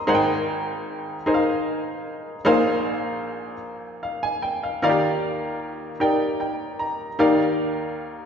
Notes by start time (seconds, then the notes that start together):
Already playing: A#4 C5 G5 A#5 C6 D#6
0.07 G#1 G#2 D#4 G#4 A#4 C5 F#5
0.15 G5
1.26 D#4 G#4 A#4 C5 D#5
1.34 F5
2.45 A#1 A#2 D#4 G#4 A#4 C5 F5
4.03 F5
4.23 G#5
4.42 G5
4.63 F5
4.82 D#2 D#3 D#4 F4 A#4 D5 F5
4.89 G4
6.00 D#4 G4 A#4 D5 G5
6.40 G5
6.79 A#5
7.19 D#2 D#3 D#4 G4 A#4 D5 F5